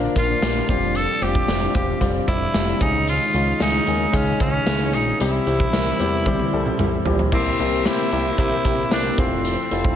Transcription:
Already playing: A#2 D3 F3 A#3 D4 F4 A#4 C5
0.15 A#1 A#3 D4 F4 A#4, kick, closed hi-hat
0.42 A#1 A#3 D4 F4 G4, snare, closed hi-hat
0.69 F1 C3 G3 C4 F4 G4, kick, closed hi-hat
0.95 A4, closed hi-hat
1.21 F1 G3 C4 F4 G4, closed hi-hat
1.35 kick
1.47 F1 G3 C4 F4 G4, snare, closed hi-hat
1.74 E1 G3 C4 F4 G4, kick, closed hi-hat
2.00 F1 G3 C4 F4 G4, kick, closed hi-hat
2.27 F1 G3 C4 E4 F4 G4, kick, closed hi-hat
2.54 F1 G3 C4 F4 G4, snare, closed hi-hat
2.80 C#2 C#3 D#3 G#3 C#4 D#4 G#4, kick, closed hi-hat
3.07 F4, closed hi-hat
3.33 C#2 G#3 C#4 D#4 F4, closed hi-hat
3.60 C#2 G#3 C#4 D#4 G#4, snare, closed hi-hat
3.86 D#2 G#3 C#4 D#4 G#4, closed hi-hat
4.12 C#2 G#3 C#4 D#4 G#4, kick, closed hi-hat
4.39 C#2 G#3 C#4 D#4 G#4, kick, closed hi-hat
4.67 C#2 G#3 C#4 D#4 G#4, snare, closed hi-hat
4.93 A#1 G#3 C#4 D#4 G#4, closed hi-hat
5.19 C2 C3 E3 G3 C4 E4 G4, closed hi-hat
5.46 C2 G3 C4 E4 G4, closed hi-hat
5.60 kick
5.72 C2 G3 C4 E4 A#4, snare, closed hi-hat
5.99 E2 G3 C4 E4 G4, closed hi-hat
6.26 C2 G3 C4 E4 G4, kick, high tom
6.39 high tom
6.52 C2 G3 C4 E4 A4
6.66 mid tom
6.79 C2 G3 C4 E4 G4, mid tom
7.05 A#1 G3 C4 E4 G4, floor tom
7.19 floor tom
7.32 C2 C3 A#3 C4 E4 G4 A#4 C5 G5, kick, crash
7.58 C2 A#3 C4 E4 G4, closed hi-hat
7.84 A#3 C4 E4 G4, snare, closed hi-hat
8.11 C2 A#3 C4 E4 G4, closed hi-hat
8.37 C2 A#3 C4 E4 G4, kick, closed hi-hat
8.64 C2 A#3 C4 E4 G4, kick, closed hi-hat
8.91 C2 A#3 C4 D4 E4 G4, snare, closed hi-hat
9.18 F1 F3 A3 C4 E4 F4 E5 A5, kick, closed hi-hat
9.45 closed hi-hat
9.70 F1 A3 C4 E4 F4, closed hi-hat
9.85 kick

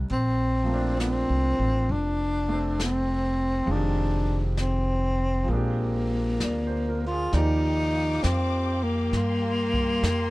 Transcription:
Already playing: D#3 G3 A3 C4 D4
0.09 A#1 C4, brush sweep
0.63 F3 A3
0.69 A#3 C4
0.74 D4
1.00 C4, snare, hi-hat pedal
1.30 C2
1.59 A1
1.89 F1 D4, brush sweep
2.49 A3 C4
2.80 C4, snare, hi-hat pedal
3.65 F1 F3 G#3, brush sweep
3.69 D#3 C4 D4
3.75 G4
4.57 C4, snare, hi-hat pedal
5.44 F3 G#3
5.48 A#1 A#3 C4, brush sweep
5.52 D4 G4
6.40 D2 D5, snare, hi-hat pedal
6.67 C5
6.89 A#4
7.07 F4
7.11 G#4
7.33 D#2 F3 A#3 D#4 G4 D5 F5 G5 D6, brush sweep, snare
8.23 F2 C4, snare, hi-hat pedal
8.83 A#3
9.12 G2 C6, brush sweep, snare
9.74 kick
10.03 F2, snare, hi-hat pedal

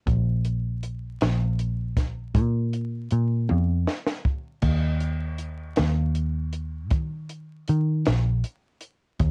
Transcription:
0.07 A#1, kick, closed hi-hat
0.45 closed hi-hat
0.83 closed hi-hat
1.21 A#1, snare, closed hi-hat
1.59 closed hi-hat
1.97 kick, snare, closed hi-hat
2.35 A#2, kick, closed hi-hat
2.73 closed hi-hat
3.11 A#2, closed hi-hat
3.49 F2, high tom
3.87 snare
4.06 snare
4.25 kick
4.62 D#2, kick, closed hi-hat, crash
5.00 closed hi-hat
5.38 closed hi-hat
5.76 D#2, snare, closed hi-hat
6.15 closed hi-hat
6.53 closed hi-hat
6.91 D#3, kick, closed hi-hat
7.29 closed hi-hat
7.68 D#3, closed hi-hat
8.05 A#1, snare, closed hi-hat
8.44 closed hi-hat
8.81 closed hi-hat
9.20 D#2, kick, closed hi-hat

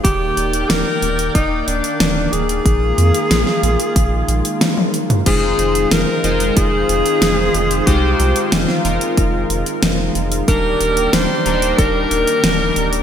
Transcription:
0.04 D#1 D#3 A#3 G4 D5 G5, kick, closed hi-hat
0.37 D#1, closed hi-hat
0.53 closed hi-hat
0.69 D#1 A#4, snare, closed hi-hat
1.02 D#1, closed hi-hat
1.19 closed hi-hat
1.35 D#1 D#4, kick, closed hi-hat
1.67 D#1 D4, closed hi-hat
1.84 closed hi-hat
2.00 D#1, snare, closed hi-hat
2.33 D#1 G#4, closed hi-hat
2.49 closed hi-hat
2.66 A#1 G#3 F4, kick, closed hi-hat
2.98 F2, closed hi-hat
3.14 closed hi-hat
3.31 A#1, snare, closed hi-hat
3.47 snare
3.63 A#1, closed hi-hat
3.80 closed hi-hat
3.96 A#1, kick, closed hi-hat
4.28 A#1, closed hi-hat
4.45 closed hi-hat
4.61 snare, closed hi-hat, high tom
4.77 high tom
4.94 closed hi-hat
5.10 closed hi-hat, mid tom
5.26 F1 G#3 C4 D#4 F4 G#4 C5, kick, closed hi-hat, crash
5.59 F1, closed hi-hat
5.75 closed hi-hat
5.91 F1 A#4, snare, closed hi-hat
6.24 F1 G#3 D#4 F4 C5, closed hi-hat
6.40 closed hi-hat
6.57 F1 G#4, kick, closed hi-hat
6.89 F1, closed hi-hat
7.06 closed hi-hat
7.22 F1, snare, closed hi-hat
7.54 F1, closed hi-hat
7.71 closed hi-hat
7.87 C2 G#3 D#4 F4 G4 C5, kick, closed hi-hat
8.20 C2, closed hi-hat
8.36 closed hi-hat
8.52 F1 F4, snare, closed hi-hat
8.69 snare
8.85 F1 G#3 D#4 F4 A#4, closed hi-hat
9.01 closed hi-hat
9.17 F1, kick, closed hi-hat
9.50 F1, closed hi-hat
9.66 closed hi-hat
9.83 F1, snare, closed hi-hat
10.15 F1, closed hi-hat
10.32 closed hi-hat
10.48 D#1 D#3 G3 A#3 D4 D#4 G4 A#4 D5, kick, closed hi-hat
10.81 D#1, closed hi-hat
10.97 closed hi-hat
11.13 D#1 C5, snare, closed hi-hat
11.46 D#1 G3 D4 D#4 A#4, closed hi-hat
11.62 closed hi-hat
11.78 D#1 A#4, kick, closed hi-hat
12.11 D#1, closed hi-hat
12.27 closed hi-hat
12.44 D#1, snare, closed hi-hat
12.76 D#1, closed hi-hat
12.93 closed hi-hat

